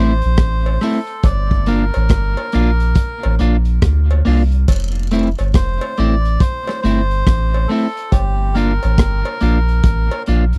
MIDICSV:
0, 0, Header, 1, 6, 480
1, 0, Start_track
1, 0, Tempo, 859599
1, 693, Time_signature, 4, 2, 24, 8
1, 5909, End_track
2, 0, Start_track
2, 0, Title_t, "Melodica"
2, 0, Program_c, 0, 22
2, 0, Note_on_c, 0, 72, 112
2, 456, Note_on_c, 0, 69, 86
2, 469, Note_off_c, 0, 72, 0
2, 695, Note_on_c, 0, 74, 111
2, 702, Note_off_c, 0, 69, 0
2, 934, Note_on_c, 0, 70, 97
2, 941, Note_off_c, 0, 74, 0
2, 1872, Note_off_c, 0, 70, 0
2, 3099, Note_on_c, 0, 72, 95
2, 3335, Note_on_c, 0, 74, 106
2, 3344, Note_off_c, 0, 72, 0
2, 3573, Note_on_c, 0, 72, 107
2, 3582, Note_off_c, 0, 74, 0
2, 3799, Note_off_c, 0, 72, 0
2, 3808, Note_on_c, 0, 72, 113
2, 4288, Note_on_c, 0, 69, 101
2, 4306, Note_off_c, 0, 72, 0
2, 4529, Note_on_c, 0, 67, 90
2, 4539, Note_off_c, 0, 69, 0
2, 4770, Note_on_c, 0, 70, 107
2, 4779, Note_off_c, 0, 67, 0
2, 5709, Note_off_c, 0, 70, 0
2, 5909, End_track
3, 0, Start_track
3, 0, Title_t, "Clean electric guitar"
3, 0, Program_c, 1, 27
3, 0, Note_on_c, 1, 57, 84
3, 0, Note_on_c, 1, 60, 82
3, 0, Note_on_c, 1, 64, 101
3, 63, Note_off_c, 1, 57, 0
3, 67, Note_off_c, 1, 60, 0
3, 69, Note_off_c, 1, 64, 0
3, 455, Note_on_c, 1, 57, 86
3, 464, Note_on_c, 1, 60, 77
3, 468, Note_on_c, 1, 64, 96
3, 544, Note_off_c, 1, 57, 0
3, 548, Note_off_c, 1, 60, 0
3, 550, Note_off_c, 1, 64, 0
3, 932, Note_on_c, 1, 58, 103
3, 938, Note_on_c, 1, 62, 103
3, 942, Note_on_c, 1, 65, 96
3, 1023, Note_off_c, 1, 58, 0
3, 1025, Note_off_c, 1, 62, 0
3, 1027, Note_off_c, 1, 65, 0
3, 1413, Note_on_c, 1, 58, 91
3, 1420, Note_on_c, 1, 62, 98
3, 1424, Note_on_c, 1, 65, 110
3, 1503, Note_off_c, 1, 58, 0
3, 1506, Note_off_c, 1, 62, 0
3, 1508, Note_off_c, 1, 65, 0
3, 1895, Note_on_c, 1, 58, 81
3, 1901, Note_on_c, 1, 62, 86
3, 1904, Note_on_c, 1, 65, 89
3, 1984, Note_off_c, 1, 58, 0
3, 1987, Note_off_c, 1, 62, 0
3, 1989, Note_off_c, 1, 65, 0
3, 2374, Note_on_c, 1, 58, 91
3, 2381, Note_on_c, 1, 62, 90
3, 2387, Note_on_c, 1, 65, 97
3, 2464, Note_off_c, 1, 58, 0
3, 2467, Note_off_c, 1, 62, 0
3, 2470, Note_off_c, 1, 65, 0
3, 2856, Note_on_c, 1, 57, 104
3, 2862, Note_on_c, 1, 60, 101
3, 2866, Note_on_c, 1, 64, 106
3, 2945, Note_off_c, 1, 57, 0
3, 2948, Note_off_c, 1, 60, 0
3, 2950, Note_off_c, 1, 64, 0
3, 3339, Note_on_c, 1, 57, 82
3, 3344, Note_on_c, 1, 60, 98
3, 3349, Note_on_c, 1, 64, 95
3, 3427, Note_off_c, 1, 57, 0
3, 3429, Note_off_c, 1, 60, 0
3, 3431, Note_off_c, 1, 64, 0
3, 3818, Note_on_c, 1, 57, 75
3, 3824, Note_on_c, 1, 60, 82
3, 3829, Note_on_c, 1, 64, 93
3, 3906, Note_off_c, 1, 57, 0
3, 3909, Note_off_c, 1, 60, 0
3, 3912, Note_off_c, 1, 64, 0
3, 4296, Note_on_c, 1, 57, 74
3, 4303, Note_on_c, 1, 60, 85
3, 4308, Note_on_c, 1, 64, 82
3, 4385, Note_off_c, 1, 57, 0
3, 4389, Note_off_c, 1, 60, 0
3, 4391, Note_off_c, 1, 64, 0
3, 4776, Note_on_c, 1, 58, 82
3, 4782, Note_on_c, 1, 62, 93
3, 4785, Note_on_c, 1, 65, 94
3, 4865, Note_off_c, 1, 58, 0
3, 4868, Note_off_c, 1, 62, 0
3, 4870, Note_off_c, 1, 65, 0
3, 5255, Note_on_c, 1, 58, 88
3, 5261, Note_on_c, 1, 62, 93
3, 5267, Note_on_c, 1, 65, 89
3, 5344, Note_off_c, 1, 58, 0
3, 5348, Note_off_c, 1, 62, 0
3, 5350, Note_off_c, 1, 65, 0
3, 5738, Note_on_c, 1, 58, 78
3, 5742, Note_on_c, 1, 62, 83
3, 5746, Note_on_c, 1, 65, 83
3, 5825, Note_off_c, 1, 58, 0
3, 5828, Note_off_c, 1, 62, 0
3, 5830, Note_off_c, 1, 65, 0
3, 5909, End_track
4, 0, Start_track
4, 0, Title_t, "Sub bass"
4, 0, Program_c, 2, 38
4, 0, Note_on_c, 2, 33, 91
4, 122, Note_off_c, 2, 33, 0
4, 140, Note_on_c, 2, 34, 91
4, 214, Note_off_c, 2, 34, 0
4, 216, Note_on_c, 2, 33, 102
4, 437, Note_off_c, 2, 33, 0
4, 693, Note_on_c, 2, 31, 107
4, 1064, Note_off_c, 2, 31, 0
4, 1095, Note_on_c, 2, 33, 101
4, 1172, Note_off_c, 2, 33, 0
4, 1177, Note_on_c, 2, 31, 97
4, 1316, Note_off_c, 2, 31, 0
4, 1422, Note_on_c, 2, 34, 91
4, 1640, Note_off_c, 2, 34, 0
4, 1815, Note_on_c, 2, 33, 93
4, 1892, Note_off_c, 2, 33, 0
4, 1902, Note_on_c, 2, 34, 89
4, 2120, Note_off_c, 2, 34, 0
4, 2137, Note_on_c, 2, 38, 84
4, 2358, Note_off_c, 2, 38, 0
4, 2383, Note_on_c, 2, 36, 97
4, 2601, Note_off_c, 2, 36, 0
4, 2617, Note_on_c, 2, 29, 112
4, 2986, Note_off_c, 2, 29, 0
4, 3014, Note_on_c, 2, 31, 90
4, 3092, Note_off_c, 2, 31, 0
4, 3098, Note_on_c, 2, 29, 110
4, 3238, Note_off_c, 2, 29, 0
4, 3344, Note_on_c, 2, 33, 91
4, 3562, Note_off_c, 2, 33, 0
4, 3822, Note_on_c, 2, 31, 96
4, 4040, Note_off_c, 2, 31, 0
4, 4063, Note_on_c, 2, 33, 94
4, 4281, Note_off_c, 2, 33, 0
4, 4540, Note_on_c, 2, 31, 100
4, 4908, Note_off_c, 2, 31, 0
4, 4938, Note_on_c, 2, 33, 104
4, 5013, Note_off_c, 2, 33, 0
4, 5020, Note_on_c, 2, 31, 98
4, 5158, Note_off_c, 2, 31, 0
4, 5260, Note_on_c, 2, 34, 98
4, 5479, Note_off_c, 2, 34, 0
4, 5499, Note_on_c, 2, 33, 101
4, 5638, Note_off_c, 2, 33, 0
4, 5742, Note_on_c, 2, 34, 94
4, 5879, Note_off_c, 2, 34, 0
4, 5909, End_track
5, 0, Start_track
5, 0, Title_t, "Muted clean electric guitar strokes"
5, 3731, Note_on_c, 9, 29, 56
5, 3787, Note_off_c, 9, 29, 0
5, 5909, End_track
6, 0, Start_track
6, 0, Title_t, "Drums"
6, 121, Note_on_c, 9, 42, 52
6, 177, Note_off_c, 9, 42, 0
6, 208, Note_on_c, 9, 42, 91
6, 211, Note_on_c, 9, 37, 106
6, 212, Note_on_c, 9, 36, 107
6, 264, Note_off_c, 9, 42, 0
6, 267, Note_off_c, 9, 37, 0
6, 268, Note_off_c, 9, 36, 0
6, 369, Note_on_c, 9, 56, 66
6, 425, Note_off_c, 9, 56, 0
6, 451, Note_on_c, 9, 46, 75
6, 454, Note_on_c, 9, 37, 66
6, 506, Note_off_c, 9, 46, 0
6, 510, Note_off_c, 9, 37, 0
6, 598, Note_on_c, 9, 42, 53
6, 654, Note_off_c, 9, 42, 0
6, 688, Note_on_c, 9, 42, 87
6, 690, Note_on_c, 9, 36, 114
6, 690, Note_on_c, 9, 56, 73
6, 744, Note_off_c, 9, 42, 0
6, 746, Note_off_c, 9, 36, 0
6, 746, Note_off_c, 9, 56, 0
6, 844, Note_on_c, 9, 36, 89
6, 899, Note_off_c, 9, 36, 0
6, 928, Note_on_c, 9, 42, 78
6, 984, Note_off_c, 9, 42, 0
6, 1081, Note_on_c, 9, 42, 53
6, 1083, Note_on_c, 9, 56, 72
6, 1137, Note_off_c, 9, 42, 0
6, 1139, Note_off_c, 9, 56, 0
6, 1167, Note_on_c, 9, 42, 96
6, 1171, Note_on_c, 9, 36, 121
6, 1175, Note_on_c, 9, 37, 117
6, 1223, Note_off_c, 9, 42, 0
6, 1227, Note_off_c, 9, 36, 0
6, 1231, Note_off_c, 9, 37, 0
6, 1325, Note_on_c, 9, 56, 79
6, 1381, Note_off_c, 9, 56, 0
6, 1408, Note_on_c, 9, 42, 69
6, 1464, Note_off_c, 9, 42, 0
6, 1564, Note_on_c, 9, 42, 49
6, 1620, Note_off_c, 9, 42, 0
6, 1647, Note_on_c, 9, 42, 86
6, 1651, Note_on_c, 9, 36, 122
6, 1703, Note_off_c, 9, 42, 0
6, 1706, Note_off_c, 9, 36, 0
6, 1806, Note_on_c, 9, 56, 80
6, 1862, Note_off_c, 9, 56, 0
6, 1893, Note_on_c, 9, 42, 76
6, 1949, Note_off_c, 9, 42, 0
6, 2039, Note_on_c, 9, 42, 46
6, 2095, Note_off_c, 9, 42, 0
6, 2132, Note_on_c, 9, 42, 84
6, 2134, Note_on_c, 9, 36, 115
6, 2135, Note_on_c, 9, 37, 114
6, 2188, Note_off_c, 9, 42, 0
6, 2190, Note_off_c, 9, 36, 0
6, 2190, Note_off_c, 9, 37, 0
6, 2293, Note_on_c, 9, 56, 67
6, 2349, Note_off_c, 9, 56, 0
6, 2376, Note_on_c, 9, 46, 80
6, 2432, Note_off_c, 9, 46, 0
6, 2524, Note_on_c, 9, 42, 48
6, 2579, Note_off_c, 9, 42, 0
6, 2613, Note_on_c, 9, 42, 89
6, 2614, Note_on_c, 9, 36, 95
6, 2614, Note_on_c, 9, 56, 74
6, 2614, Note_on_c, 9, 58, 77
6, 2669, Note_off_c, 9, 42, 0
6, 2670, Note_off_c, 9, 36, 0
6, 2670, Note_off_c, 9, 56, 0
6, 2670, Note_off_c, 9, 58, 0
6, 2853, Note_on_c, 9, 42, 80
6, 2909, Note_off_c, 9, 42, 0
6, 3006, Note_on_c, 9, 42, 49
6, 3008, Note_on_c, 9, 56, 68
6, 3062, Note_off_c, 9, 42, 0
6, 3064, Note_off_c, 9, 56, 0
6, 3092, Note_on_c, 9, 42, 93
6, 3095, Note_on_c, 9, 36, 127
6, 3101, Note_on_c, 9, 37, 110
6, 3148, Note_off_c, 9, 42, 0
6, 3151, Note_off_c, 9, 36, 0
6, 3157, Note_off_c, 9, 37, 0
6, 3246, Note_on_c, 9, 56, 84
6, 3302, Note_off_c, 9, 56, 0
6, 3336, Note_on_c, 9, 42, 71
6, 3391, Note_off_c, 9, 42, 0
6, 3491, Note_on_c, 9, 42, 51
6, 3547, Note_off_c, 9, 42, 0
6, 3576, Note_on_c, 9, 36, 120
6, 3578, Note_on_c, 9, 42, 89
6, 3632, Note_off_c, 9, 36, 0
6, 3633, Note_off_c, 9, 42, 0
6, 3727, Note_on_c, 9, 56, 80
6, 3736, Note_on_c, 9, 37, 66
6, 3783, Note_off_c, 9, 56, 0
6, 3792, Note_off_c, 9, 37, 0
6, 3823, Note_on_c, 9, 42, 75
6, 3879, Note_off_c, 9, 42, 0
6, 3969, Note_on_c, 9, 42, 47
6, 4025, Note_off_c, 9, 42, 0
6, 4057, Note_on_c, 9, 36, 101
6, 4057, Note_on_c, 9, 42, 88
6, 4060, Note_on_c, 9, 37, 100
6, 4113, Note_off_c, 9, 36, 0
6, 4113, Note_off_c, 9, 42, 0
6, 4116, Note_off_c, 9, 37, 0
6, 4212, Note_on_c, 9, 56, 67
6, 4268, Note_off_c, 9, 56, 0
6, 4301, Note_on_c, 9, 46, 80
6, 4357, Note_off_c, 9, 46, 0
6, 4450, Note_on_c, 9, 42, 52
6, 4506, Note_off_c, 9, 42, 0
6, 4534, Note_on_c, 9, 42, 84
6, 4535, Note_on_c, 9, 36, 96
6, 4536, Note_on_c, 9, 56, 70
6, 4590, Note_off_c, 9, 42, 0
6, 4591, Note_off_c, 9, 36, 0
6, 4591, Note_off_c, 9, 56, 0
6, 4777, Note_on_c, 9, 42, 80
6, 4833, Note_off_c, 9, 42, 0
6, 4929, Note_on_c, 9, 42, 53
6, 4929, Note_on_c, 9, 56, 64
6, 4985, Note_off_c, 9, 42, 0
6, 4985, Note_off_c, 9, 56, 0
6, 5013, Note_on_c, 9, 42, 103
6, 5015, Note_on_c, 9, 36, 127
6, 5022, Note_on_c, 9, 37, 118
6, 5069, Note_off_c, 9, 42, 0
6, 5071, Note_off_c, 9, 36, 0
6, 5078, Note_off_c, 9, 37, 0
6, 5167, Note_on_c, 9, 56, 77
6, 5223, Note_off_c, 9, 56, 0
6, 5252, Note_on_c, 9, 42, 72
6, 5308, Note_off_c, 9, 42, 0
6, 5408, Note_on_c, 9, 42, 48
6, 5464, Note_off_c, 9, 42, 0
6, 5491, Note_on_c, 9, 42, 97
6, 5493, Note_on_c, 9, 36, 114
6, 5547, Note_off_c, 9, 42, 0
6, 5549, Note_off_c, 9, 36, 0
6, 5648, Note_on_c, 9, 56, 84
6, 5704, Note_off_c, 9, 56, 0
6, 5731, Note_on_c, 9, 42, 76
6, 5787, Note_off_c, 9, 42, 0
6, 5879, Note_on_c, 9, 42, 47
6, 5909, Note_off_c, 9, 42, 0
6, 5909, End_track
0, 0, End_of_file